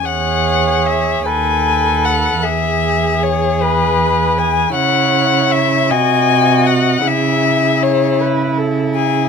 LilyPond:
<<
  \new Staff \with { instrumentName = "Violin" } { \time 6/8 \key e \major \tempo 4. = 52 fis''4 e''8 gis''4 fis''8 | e''4 cis''8 b'4 gis''8 | fis''4 e''8 gis''4 fis''8 | e''4 cis''8 r4 gis''8 | }
  \new Staff \with { instrumentName = "Viola" } { \time 6/8 \key e \major cis''4. b'4. | gis'4. b'4. | cis''4. dis''4. | gis'4. b'8 a'8 gis'8 | }
  \new Staff \with { instrumentName = "Violin" } { \time 6/8 \key e \major gis'4. a'4. | gis'2. | e'4. fis'4. | e'2. | }
  \new Staff \with { instrumentName = "Cello" } { \clef bass \time 6/8 \key e \major e,4. dis,4. | e,2. | cis4. bis,4. | cis2. | }
>>